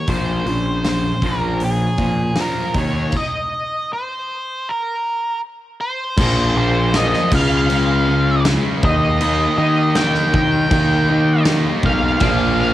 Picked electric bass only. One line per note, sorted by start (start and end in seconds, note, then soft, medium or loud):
0.08 0.40 A#1 medium
0.46 1.10 A#1 medium
1.22 1.86 A#1 medium
1.98 2.31 A#2 medium
2.75 3.07 D#2 medium
6.17 7.12 A#1 medium
7.32 8.57 C#2 medium
8.83 9.46 D#2 medium
9.58 10.21 D#3 medium
10.34 10.65 D#3 medium
10.71 11.65 D#3 medium
11.84 12.15 B1 medium
12.21 12.74 A#1 loud